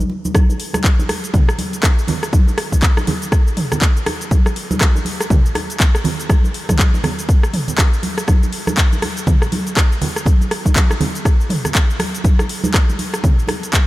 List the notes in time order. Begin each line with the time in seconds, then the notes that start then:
0.00 shaker
0.10 muted conga
0.25 high conga, shaker
0.35 kick, cross-stick, closed hi-hat, high conga, shaker
0.50 muted conga, shaker
0.60 open hi-hat
0.74 cross-stick, closed hi-hat, muted conga, high conga, shaker
0.84 kick, clap, closed hi-hat, shaker
0.99 muted conga, shaker
1.09 cross-stick, open hi-hat, high conga
1.24 closed hi-hat, shaker
1.34 kick, closed hi-hat, mid tom, muted conga, high conga, low conga, shaker
1.49 cross-stick, shaker
1.58 open hi-hat, muted conga, high conga
1.73 closed hi-hat, shaker
1.83 kick, cross-stick, clap, closed hi-hat, muted conga, shaker
1.99 shaker
2.08 open hi-hat, muted conga, low conga
2.23 cross-stick, closed hi-hat, shaker
2.33 kick, closed hi-hat, high conga, shaker
2.48 muted conga, shaker
2.58 cross-stick, open hi-hat
2.72 kick, closed hi-hat, muted conga, high conga, shaker
2.82 kick, clap, closed hi-hat, shaker
2.97 cross-stick, muted conga, shaker
3.07 open hi-hat, high conga, low conga
3.22 closed hi-hat, shaker
3.32 kick, cross-stick, closed hi-hat, muted conga, shaker
3.47 shaker
3.57 mid tom, open hi-hat, muted conga
3.72 cross-stick, closed hi-hat, low conga, shaker
3.81 kick, clap, closed hi-hat, muted conga, shaker
3.97 shaker
4.06 cross-stick, open hi-hat, muted conga, high conga
4.21 closed hi-hat, shaker
4.31 kick, closed hi-hat, high conga, shaker
4.46 cross-stick, muted conga, shaker
4.56 open hi-hat
4.71 closed hi-hat, muted conga, high conga, shaker
4.81 kick, cross-stick, clap, closed hi-hat, shaker
4.96 muted conga, shaker
5.05 open hi-hat, high conga
5.21 cross-stick, closed hi-hat, shaker
5.30 kick, closed hi-hat, mid tom, muted conga, high conga, low conga, shaker
5.46 shaker
5.55 cross-stick, open hi-hat, muted conga, high conga
5.70 closed hi-hat, shaker
5.80 kick, clap, closed hi-hat, muted conga, shaker
5.95 cross-stick, shaker
6.04 open hi-hat, muted conga, low conga
6.20 closed hi-hat, shaker
6.30 kick, cross-stick, closed hi-hat, high conga, shaker
6.44 muted conga, shaker
6.54 open hi-hat
6.69 kick, cross-stick, closed hi-hat, mid tom, muted conga, high conga, shaker
6.79 kick, clap, closed hi-hat, shaker
6.94 muted conga, shaker
7.04 cross-stick, open hi-hat, high conga, low conga
7.19 closed hi-hat, shaker
7.29 kick, closed hi-hat, muted conga, shaker
7.43 cross-stick, shaker
7.54 mid tom, open hi-hat, muted conga
7.68 closed hi-hat, low conga, shaker
7.78 kick, cross-stick, clap, closed hi-hat, shaker
7.93 shaker
8.03 open hi-hat, muted conga, high conga
8.18 cross-stick, closed hi-hat, shaker
8.28 kick, cross-stick, closed hi-hat, high conga, shaker
8.43 muted conga, shaker
8.53 open hi-hat
8.67 cross-stick, closed hi-hat, muted conga, high conga, shaker
8.77 kick, clap, closed hi-hat, shaker
8.93 muted conga, shaker
9.02 cross-stick, open hi-hat, high conga
9.17 closed hi-hat, shaker
9.27 kick, closed hi-hat, mid tom, muted conga, high conga, low conga, shaker
9.42 cross-stick, shaker
9.52 open hi-hat, muted conga, high conga
9.67 closed hi-hat, shaker
9.77 kick, cross-stick, clap, closed hi-hat, muted conga, shaker
9.92 shaker
10.02 open hi-hat, muted conga, low conga
10.16 cross-stick, closed hi-hat, shaker
10.26 kick, closed hi-hat, high conga, shaker
10.41 muted conga, shaker
10.51 cross-stick, open hi-hat
10.65 kick, closed hi-hat, muted conga, high conga, shaker
10.76 kick, clap, closed hi-hat, shaker
10.90 cross-stick, muted conga, shaker
11.01 open hi-hat, high conga, low conga
11.15 closed hi-hat, shaker
11.25 kick, cross-stick, closed hi-hat, muted conga, shaker
11.41 shaker
11.50 mid tom, open hi-hat, muted conga
11.65 cross-stick, closed hi-hat, low conga, shaker
11.75 kick, clap, closed hi-hat, muted conga, shaker
11.90 shaker
11.99 cross-stick, open hi-hat, muted conga, high conga
12.15 closed hi-hat, shaker
12.24 kick, closed hi-hat, high conga, shaker
12.39 cross-stick, muted conga, shaker
12.49 open hi-hat
12.64 closed hi-hat, muted conga, high conga, shaker
12.74 kick, cross-stick, clap, closed hi-hat, shaker
12.89 muted conga, shaker
12.99 open hi-hat, high conga
13.14 cross-stick, closed hi-hat, shaker
13.24 kick, closed hi-hat, mid tom, muted conga, high conga, low conga, shaker
13.39 shaker
13.48 cross-stick, open hi-hat, muted conga, high conga
13.63 closed hi-hat, shaker
13.73 kick, clap, closed hi-hat, muted conga, shaker